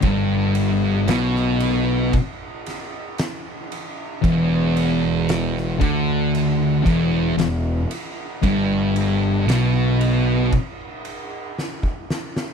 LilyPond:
<<
  \new Staff \with { instrumentName = "Distorted electric guitar" } { \clef bass \time 4/4 \key e \minor \tempo 4 = 57 g,4 b,4 r2 | e,4. d4 e,8 e,8 r8 | g,4 b,4 r2 | }
  \new Staff \with { instrumentName = "Distorted electric guitar" } { \clef bass \time 4/4 \key e \minor g,4 b,4 r2 | e,4. d4 e,8 e,8 r8 | g,4 b,4 r2 | }
  \new Staff \with { instrumentName = "Fingered electric bass" } { \clef bass \time 4/4 \key e \minor g,,4 b,,4 r2 | e,,4. d,4 e,,8 e,,8 r8 | g,,4 b,,4 r2 | }
  \new DrumStaff \with { instrumentName = "Drums" } \drummode { \time 4/4 <bd cymr>8 cymr8 <cymr sn>16 sn16 cymr8 <bd cymr>8 <cymr sn>8 <cymr sn>8 cymr8 | <bd cymr>8 cymr8 <cymr sn>16 sn16 <bd cymr>8 cymr8 <bd cymr>8 <cymr sn>8 cymr8 | <bd cymr>8 cymr8 <cymr sn>8 cymr8 <bd cymr>8 cymr8 sn16 bd16 sn16 sn16 | }
>>